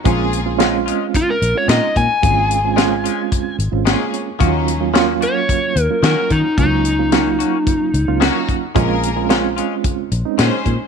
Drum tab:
HH |xxxxxxxx|xxxxxxxx|xxxxxxxx|xxxxxxxx|
SD |--o---o-|--o---o-|--o---o-|--o---o-|
BD |o---o--o|o---o---|o---o--o|o---o--o|

HH |xxxxxxxx|
SD |--o---o-|
BD |o---o--o|